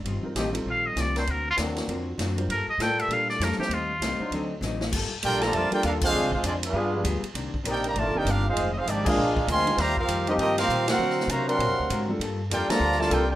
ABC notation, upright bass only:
X:1
M:4/4
L:1/8
Q:"Swing" 1/4=198
K:Gm
V:1 name="Upright bass" clef=bass
G,,, z A,,,2 B,,,2 C,,2 | D,,2 E,,2 ^E,,2 ^F,,2 | G,, z A,,2 B,,2 F,, z | E,,2 C,, z D,,2 A,,,2 |
G,,, z B,,,2 F,, z E,,2 | (3D,, C,, _A,,, F,,2 G,,2 D,, z | C,, z B,,,2 (3A,,, G,,, E,,, G,,,2 | F,,,2 _A,,,2 B,,,2 D,,2 |
E,,2 F,,2 G,,2 B,,2 | D,2 C,2 (3^A,, ^F,, D,, _A,,2 | G,,2 F,, z D,,2 C,,2 |]